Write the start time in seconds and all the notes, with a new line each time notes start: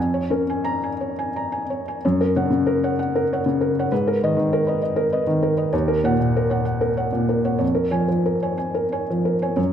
Already playing: F2 G#5
0.14 C#5
0.30 C#4 A#4
0.50 G#5
0.65 A#5
0.84 G#5
1.01 C#5
1.19 G#5
1.36 A#5
1.52 G#5
1.70 C#5
1.88 G#5
2.05 F#2 C#5
2.21 A#4
2.36 C#3 C#5 F#5
2.50 C#3
2.67 A#4
2.84 C#5 F#5
2.99 F#5
3.15 A#4
3.33 C#5 F#5
3.46 C#3
3.61 A#4
3.79 C#5 F#5
3.92 G#2 B4
4.08 A#4
4.23 D#3 B4 D#5
4.37 D#3
4.53 A#4
4.67 B4 D#5
4.82 D#5
4.96 A#4
5.12 B4 D#5
5.27 D#3
5.43 A#4
5.57 B4 D#5
5.73 D#2 C#5
5.88 A#4
6.04 A#2 C#5 F#5
6.19 A#2
6.36 A#4
6.50 C#5 F#5
6.65 F#5
6.81 A#4
6.97 C#5 F#5
7.13 A#2
7.29 A#4
7.45 C#5 F#5
7.58 F2 C#5
7.75 A#4
7.91 F3 C#5 G#5
8.08 F3
8.26 A#4
8.43 C#5 G#5
8.58 G#5
8.74 A#4
8.92 C#5 G#5
9.10 F3
9.25 A#4
9.42 C#5 G#5
9.56 F#2 C#5